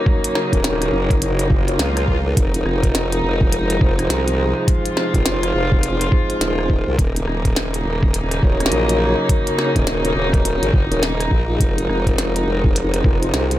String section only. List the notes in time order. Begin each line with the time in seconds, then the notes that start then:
Already playing: C#3 F#3 A#3 D#4
2.37 C3 F3 G#3 D#4
4.68 F4
6.99 C#3 F#3 A#3 D#4
11.60 C3 F3 G#3